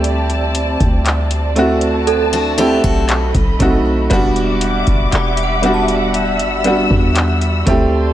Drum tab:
HH |xxxxxxxxxxx-xxx-|xxxxxxxxxxx-xxx-|
CP |----x-------x---|----x-------x---|
BD |---o-------o-oo-|o--o-------o--o-|